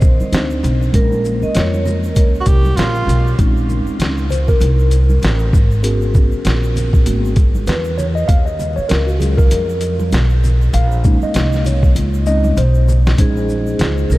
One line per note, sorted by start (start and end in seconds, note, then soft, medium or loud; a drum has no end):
0.00 0.18 A#1 loud
0.00 0.29 D3 medium
0.00 0.28 D#3 medium
0.00 0.29 C4 medium
0.00 0.30 A#4 medium
0.00 0.61 C5 medium
0.00 kick loud
0.00 shaker medium
0.00 shaker soft
0.20 muted upright bass stroke soft
0.20 high conga medium
0.20 shaker soft
0.32 0.62 D2 medium
0.32 0.94 C4 soft
0.32 0.94 D4 soft
0.32 0.94 D#4 soft
0.32 0.95 C5 medium
0.32 snare loud
0.32 closed hi-hat medium
0.32 shaker medium
0.50 shaker soft
0.63 0.92 B1 medium
0.63 closed hi-hat medium
0.63 low conga medium
0.63 shaker soft
0.63 shaker medium
0.82 shaker soft
0.93 1.40 A#1 medium
0.93 3.34 G#3 medium
0.93 3.35 A#3 medium
0.93 3.35 C#4 medium
0.93 1.44 A#4 medium
0.93 3.36 A#4 medium
0.93 kick loud
0.93 closed hi-hat medium
0.93 shaker medium
1.12 high conga medium
1.12 shaker soft
1.25 shaker soft
1.42 1.55 D#5 medium
1.42 muted upright bass stroke medium
1.42 shaker soft
1.55 2.16 F2 medium
1.55 1.84 C#5 medium
1.55 snare loud
1.55 closed hi-hat medium
1.55 high conga soft
1.55 shaker medium
1.74 high conga medium
1.74 shaker soft
1.85 3.04 A#4 medium
1.85 low conga medium
1.85 shaker soft
1.85 shaker medium
2.04 shaker medium
2.16 2.45 C#2 medium
2.16 kick medium
2.16 closed hi-hat medium
2.16 shaker medium
2.35 shaker soft
2.41 2.49 F#4 medium
2.46 2.76 C2 medium
2.46 2.78 G4 loud
2.46 kick loud
2.46 closed hi-hat medium
2.46 shaker medium
2.46 shaker soft
2.65 high conga medium
2.65 shaker soft
2.77 3.06 A#1 medium
2.77 3.38 F4 medium
2.77 snare loud
2.77 closed hi-hat medium
2.77 shaker medium
2.95 shaker soft
3.07 3.37 B1 medium
3.07 closed hi-hat medium
3.07 low conga medium
3.07 shaker soft
3.07 shaker medium
3.27 shaker soft
3.38 3.85 A#1 loud
3.38 4.26 G#3 medium
3.38 4.27 C4 soft
3.38 4.27 C#4 medium
3.38 4.27 D#4 medium
3.38 kick loud
3.38 closed hi-hat medium
3.38 shaker medium
3.57 shaker soft
3.69 high conga soft
3.69 low conga medium
3.69 shaker soft
3.86 muted upright bass stroke soft
3.86 shaker soft
3.99 4.58 C#2 medium
3.99 snare loud
3.99 closed hi-hat medium
3.99 shaker medium
4.18 shaker soft
4.30 4.49 C5 medium
4.30 closed hi-hat medium
4.30 low conga medium
4.30 shaker soft
4.32 shaker medium
4.48 5.80 A#4 medium
4.48 kick medium
4.48 shaker medium
4.60 5.19 C2 medium
4.60 closed hi-hat medium
4.60 shaker medium
4.79 shaker soft
4.91 closed hi-hat medium
4.91 shaker soft
4.91 shaker medium
5.09 high conga medium
5.09 shaker soft
5.22 5.51 A1 medium
5.22 snare loud
5.22 closed hi-hat medium
5.22 shaker medium
5.39 shaker soft
5.53 6.28 G#1 medium
5.53 kick loud
5.53 low conga medium
5.53 shaker soft
5.53 shaker medium
5.71 shaker soft
5.83 7.05 B3 medium
5.83 7.05 C#4 medium
5.83 7.06 F#4 medium
5.83 7.33 G#4 medium
5.83 8.24 A#4 medium
5.83 closed hi-hat loud
5.83 shaker medium
6.02 shaker soft
6.14 kick medium
6.14 high conga soft
6.14 low conga medium
6.14 shaker soft
6.32 muted upright bass stroke soft
6.32 shaker soft
6.45 7.03 A#1 medium
6.45 snare loud
6.45 closed hi-hat medium
6.45 shaker medium
6.63 shaker soft
6.76 closed hi-hat medium
6.76 low conga medium
6.76 shaker soft
6.76 shaker medium
6.93 kick medium
6.93 shaker medium
7.06 7.64 G#1 medium
7.06 7.34 A#3 soft
7.06 7.34 B3 soft
7.06 7.34 C#4 soft
7.06 7.34 F#4 soft
7.06 closed hi-hat medium
7.06 shaker medium
7.25 shaker soft
7.36 kick loud
7.36 closed hi-hat medium
7.36 shaker medium
7.36 shaker soft
7.55 high conga medium
7.55 shaker soft
7.67 8.26 E2 medium
7.67 7.96 B4 loud
7.67 snare loud
7.67 closed hi-hat medium
7.67 shaker medium
7.84 shaker soft
7.98 8.06 C#5 medium
7.98 low conga medium
7.98 shaker soft
7.98 shaker medium
8.15 8.29 D#5 medium
8.15 shaker soft
8.28 8.75 D#2 loud
8.28 8.45 F5 loud
8.28 kick loud
8.28 closed hi-hat medium
8.28 shaker medium
8.45 8.77 D#5 medium
8.45 shaker soft
8.59 high conga soft
8.59 low conga medium
8.59 shaker soft
8.76 8.90 C#5 medium
8.76 muted upright bass stroke medium
8.76 shaker soft
8.89 9.48 C#2 medium
8.89 9.08 A#4 medium
8.89 snare loud
8.89 closed hi-hat medium
8.89 shaker medium
9.07 9.20 F#4 medium
9.07 shaker soft
9.20 9.63 F#3 soft
9.20 9.63 G#3 soft
9.20 9.63 C#4 soft
9.20 9.63 F4 medium
9.20 9.37 G#4 medium
9.20 closed hi-hat medium
9.20 low conga medium
9.20 shaker soft
9.20 shaker medium
9.37 9.95 A#4 medium
9.37 kick medium
9.37 shaker medium
9.51 10.09 F2 medium
9.51 closed hi-hat medium
9.51 shaker medium
9.69 shaker soft
9.81 closed hi-hat medium
9.81 shaker medium
9.81 shaker soft
9.99 high conga medium
9.99 shaker soft
10.12 10.71 B1 loud
10.12 snare loud
10.12 closed hi-hat medium
10.12 shaker medium
10.29 shaker soft
10.44 low conga medium
10.44 shaker soft
10.44 shaker medium
10.62 shaker soft
10.73 11.19 A#1 loud
10.73 11.19 F5 loud
10.73 closed hi-hat medium
10.73 shaker medium
10.92 shaker soft
11.04 12.25 G#3 medium
11.04 13.15 A#3 soft
11.04 12.26 C#4 soft
11.04 12.26 D#4 medium
11.04 kick medium
11.04 high conga soft
11.04 shaker soft
11.04 shaker medium
11.22 11.63 D#5 medium
11.22 muted upright bass stroke medium
11.22 shaker soft
11.34 11.93 C2 medium
11.34 snare loud
11.34 closed hi-hat medium
11.34 shaker medium
11.53 snare soft
11.53 shaker soft
11.65 closed hi-hat medium
11.65 low conga medium
11.65 shaker soft
11.66 11.94 C#5 medium
11.66 shaker medium
11.83 kick medium
11.83 shaker medium
11.95 12.54 C#2 medium
11.95 closed hi-hat medium
11.95 shaker medium
12.14 shaker soft
12.26 12.54 G#3 soft
12.26 12.54 C4 soft
12.26 12.54 C#4 soft
12.26 12.55 D#4 medium
12.26 12.58 D#5 loud
12.26 shaker medium
12.26 shaker soft
12.44 high conga medium
12.44 shaker soft
12.57 13.15 B1 medium
12.57 13.15 C5 medium
12.57 closed hi-hat medium
12.57 shaker medium
12.74 shaker soft
12.88 low conga medium
12.88 shaker soft
12.88 shaker medium
13.06 snare medium
13.06 shaker soft
13.17 13.77 A#1 medium
13.17 14.18 G#3 medium
13.17 14.18 C#4 medium
13.17 14.18 D#4 medium
13.17 14.14 G#4 medium
13.17 14.18 C5 medium
13.17 kick loud
13.17 closed hi-hat medium
13.17 shaker medium
13.37 shaker soft
13.49 high conga soft
13.49 shaker soft
13.66 shaker soft
13.79 14.09 C#2 medium
13.79 snare loud
13.79 closed hi-hat medium
13.79 shaker medium
13.98 shaker soft
14.10 14.18 C2 medium
14.10 14.18 A#4 medium
14.10 low conga medium
14.10 shaker soft
14.10 shaker medium